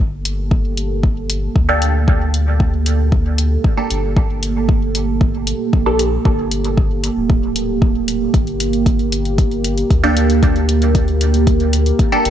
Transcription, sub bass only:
0.00 1.49 G1 loud
1.56 3.57 D2 loud
3.90 5.53 G1 medium
5.73 6.18 A#1 medium
6.25 7.09 G1 loud
7.17 8.27 D1 medium
8.34 9.83 G1 loud
9.90 11.92 D2 loud
12.25 12.30 G1 medium

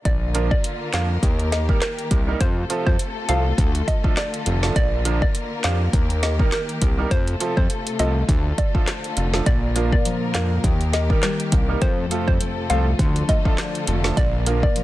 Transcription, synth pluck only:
0.05 0.31 D5 loud
0.51 0.62 D5 medium
0.94 1.08 F5 medium
1.52 1.67 D#5 medium
1.82 2.25 A#4 medium
2.41 2.66 C5 loud
2.86 2.98 C5 medium
3.29 3.43 F5 medium
3.88 4.02 D#5 medium
4.17 4.60 D5 medium
4.76 5.01 D5 loud
5.22 5.33 D5 medium
5.64 5.78 F5 medium
6.23 6.37 D#5 medium
6.52 6.96 A#4 medium
7.11 7.37 C5 loud
7.57 7.68 C5 medium
8.00 8.14 D#5 medium
8.58 8.73 D5 medium
8.88 9.31 C5 medium
9.46 9.72 D5 loud
9.93 10.04 D5 medium
10.35 10.49 F5 medium
10.93 11.08 D#5 medium
11.23 11.66 A#4 medium
11.82 12.07 C5 loud
12.28 12.39 C5 medium
12.70 12.84 F5 medium
13.29 13.43 D#5 medium
13.58 14.01 D5 medium
14.17 14.43 D5 loud
14.63 14.74 D5 medium

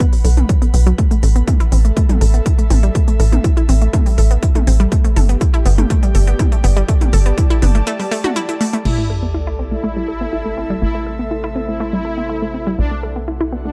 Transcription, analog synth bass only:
0.25 0.44 B1 medium
0.74 0.93 B1 loud
1.23 1.42 A1 loud
1.72 1.91 A1 medium
2.21 2.41 A1 medium
2.70 2.90 A1 medium
3.20 3.39 A1 loud
3.69 3.88 A1 loud
4.18 4.37 A1 medium
4.67 4.87 A1 medium
5.16 5.36 G1 loud
5.66 5.85 G1 loud
6.15 6.34 G1 medium
6.64 6.83 G1 medium
7.13 7.32 G1 loud
7.62 7.82 G1 loud
8.85 10.80 A1 medium
10.82 12.76 A1 medium
12.79 13.72 B1 medium

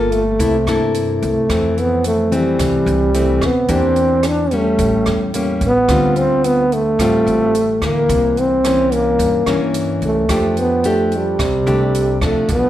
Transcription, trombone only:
0.00 0.14 A#3 medium
0.12 0.95 A3 medium
1.25 1.82 A3 medium
1.80 2.06 B3 medium
2.07 2.38 A3 medium
2.36 3.47 G3 medium
3.45 3.74 B3 medium
3.72 4.29 C4 loud
4.28 4.56 D4 loud
4.55 5.36 A3 medium
5.65 6.19 B3 loud
6.18 6.47 C4 loud
6.46 6.75 B3 loud
6.73 7.82 A3 loud
7.85 8.40 A#3 medium
8.39 8.95 C4 loud
8.93 9.75 A#3 medium
10.05 10.61 A3 medium
10.59 10.89 B3 medium
10.87 11.18 A3 medium
11.16 12.26 G3 medium
12.25 12.50 A3 medium
12.52 12.70 B3 medium

